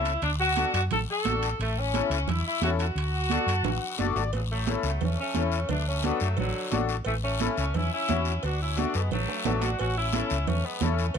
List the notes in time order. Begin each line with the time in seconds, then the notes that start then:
Already playing: C#2 C#4 E4 A4
0.05 high timbale, short guiro
0.22 D2 D4, high conga, high timbale, long guiro
0.40 F#4
0.56 D4 F#4 A4, high conga, high timbale, short guiro
0.74 F#2 F#4, high timbale, short guiro
0.91 A1 A4, high conga, low conga, high timbale, long guiro
1.11 A4
1.25 A1 D4 F#4 A4, high conga, high timbale, low timbale, short guiro
1.43 high timbale, short guiro
1.59 A1 A3, high conga, high timbale, long guiro
1.79 C#4
1.94 C#4 E4 A4, high conga, high timbale, short guiro
2.10 C#2 C#4, high timbale, short guiro
2.28 E2 E4, high conga, low conga, high timbale, long guiro
2.46 E4
2.62 E2 C#4 E4 F#4 A4, high conga, high timbale, short guiro
2.79 F#4, high timbale, short guiro
2.95 D2, high conga, high timbale, long guiro
3.30 D4 F#4 A4, high conga, high timbale, short guiro
3.47 F#2 A5, high timbale, short guiro
3.63 A1 F#5, high conga, low conga, high timbale, long guiro
3.81 F#5
3.99 F#1 D4 F#4 A4 D5, high conga, low timbale, short guiro
4.16 G#1, low timbale, short guiro
4.33 A1 C#3 F#3, cowbell, high conga, long guiro
4.52 F#3 A3
4.67 C#4 E4 A4, cowbell, high conga, short guiro
4.83 C#2 F#3 A3, short guiro
5.01 E2 A3 C#4, cowbell, high conga, low conga, long guiro
5.21 A3 C#4
5.35 E2 C#4 E4 A4, cowbell, high conga, short guiro
5.52 short guiro
5.69 D2 A3 D4, cowbell, high conga, low conga, long guiro
5.88 A3 C#4
6.03 F#3 B3 D4 F#4 A4, cowbell, high conga, short guiro
6.20 F#2 F#3 A3, short guiro
6.37 A1 D3 F#3, cowbell, high conga, low conga, long guiro
6.71 A1 D4 F#4 A4, cowbell, high conga, low timbale, short guiro
6.89 short guiro
7.05 A1 E3 A3, cowbell, high conga, long guiro
7.24 A3 C#4
7.40 C#4 E4 A4, cowbell, high conga, short guiro
7.57 C#2 A3 C#4, short guiro
7.74 E2 C#4 E4, cowbell, high conga, low conga, long guiro
7.93 C#4 E4
8.09 E2 C#4 E4 F#4, cowbell, high conga, low conga, low timbale, short guiro
8.25 short guiro
8.43 D2 D4 F#4, cowbell, high conga, long guiro
8.62 C#4 E4
8.77 A3 D4 F#4 A4, cowbell, high conga, short guiro
8.94 F#2 G#3 B3, short guiro
9.11 A1 F#3 A3, cowbell, high conga, low conga, long guiro
9.28 high timbale
9.45 A1 D4 F#4 A4, cowbell, high conga, low conga, high timbale, short guiro
9.62 D4 F#4, low timbale, short guiro
9.79 A1 C#4 F#4, cowbell, high conga, long guiro
9.97 C#4 E4
10.13 C#4 E4 A4, cowbell, high conga, short guiro
10.30 C#2, short guiro
10.47 E2 A3 C#4, cowbell, high conga, low conga, long guiro
10.65 G#3 B3
10.81 E2 A3 C#4 E4 A4, cowbell, high conga, low conga, short guiro
10.98 short guiro
11.14 D2, cowbell